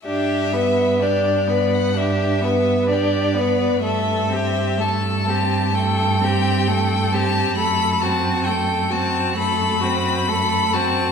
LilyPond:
<<
  \new Staff \with { instrumentName = "Violin" } { \time 4/4 \key g \major \tempo 4 = 65 e''4 d''8. fis''16 e''4 d''4 | e''4 a''4 g''4. a''8 | b''8 a''8 g''8 a''8 b''4. a''8 | }
  \new Staff \with { instrumentName = "Violin" } { \time 4/4 \key g \major g'8 b'8 g'8 b'8 g'8 b'8 g'8 b'8 | a'8 g'8 a'8 g'8 a'8 g'8 a'8 g'8 | a'8 fis'8 a'8 fis'8 a'8 fis'8 a'8 fis'8 | }
  \new Staff \with { instrumentName = "Viola" } { \time 4/4 \key g \major d'8 b8 d'8 b8 d'8 b8 d'8 b8 | a8 c'8 a8 c'8 a8 c'8 a8 c'8 | a8 c'8 a8 c'8 a8 c'8 a8 c'8 | }
  \new Staff \with { instrumentName = "Cello" } { \clef bass \time 4/4 \key g \major g,1 | g,1 | fis,1 | }
>>